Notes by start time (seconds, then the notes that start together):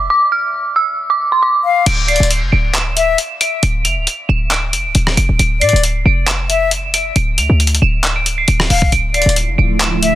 0.10 D6
0.32 F6
0.76 E6
1.10 D6
1.32 C6
1.42 D6
1.64 F5
1.86 D1 D7, closed hi-hat, crash
2.08 D5 C7, closed hi-hat
2.16 closed hi-hat
2.20 D1, closed hi-hat
2.31 closed hi-hat
2.42 F1
2.52 D1 D7
2.75 E7, clap, closed hi-hat
2.97 E5, closed hi-hat
3.18 closed hi-hat
3.41 D7, closed hi-hat
3.63 D1 D7, closed hi-hat
3.85 F1 F7, closed hi-hat
3.97 D1
4.07 closed hi-hat
4.29 D1 E7
4.51 D7, clap, closed hi-hat
4.73 F1, closed hi-hat
4.85 D1
4.95 D1, closed hi-hat
5.07 cross-stick
5.17 F1 D7, closed hi-hat
5.29 D1
5.39 D1 D7, closed hi-hat
5.61 A2 D5 C7, closed hi-hat
5.69 closed hi-hat
5.73 D1, closed hi-hat
5.83 closed hi-hat
6.05 F1 D7
6.27 E7, clap, closed hi-hat
6.49 E5, closed hi-hat
6.71 closed hi-hat
6.94 D7, closed hi-hat
7.16 D1 D7, closed hi-hat
7.38 D2 F7, closed hi-hat
7.50 D2
7.60 closed hi-hat
7.67 closed hi-hat
7.75 closed hi-hat
7.82 D1 E7
8.04 clap, closed hi-hat
8.16 D7
8.26 closed hi-hat
8.38 C7
8.48 D1 D7, closed hi-hat
8.60 cross-stick
8.70 D1 F5, open hi-hat
8.82 kick
8.92 D1 D3 F3 A3 E4 D7, closed hi-hat
9.14 D5 C7, closed hi-hat
9.22 closed hi-hat
9.26 D1, closed hi-hat
9.36 closed hi-hat
9.48 F1
9.58 D1 D7
9.80 E7, clap, closed hi-hat
10.03 E5, closed hi-hat